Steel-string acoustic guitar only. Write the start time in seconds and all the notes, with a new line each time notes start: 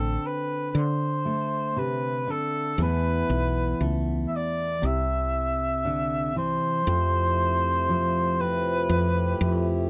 Already playing: D3 C4
1.25 A3
1.76 C3
2.28 D3
2.79 E2 E3 A3 B3 E4
3.81 A3
4.82 C3
5.85 D3
6.36 E3
6.87 F2
7.89 F3
8.41 C4